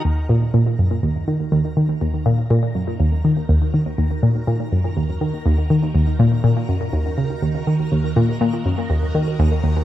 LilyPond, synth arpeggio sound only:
\new Staff \with { instrumentName = "Synth arpeggio sound" } { \clef bass \time 4/4 \key ees \minor \tempo 4 = 122 ees,8 bes,8 bes,8 ges,8 ees,8 ees8 ees,8 ees8 | ees,8 bes,8 bes,8 ges,8 ees,8 ees8 ees,8 ees8 | ees,8 bes,8 bes,8 ges,8 ees,8 ees8 ees,8 ees8 | ees,8 bes,8 bes,8 ges,8 ees,8 des8 ees,8 ees8 |
ees,8 bes,8 bes,8 ges,8 ees,8 ees8 ees,8 ees,8 | }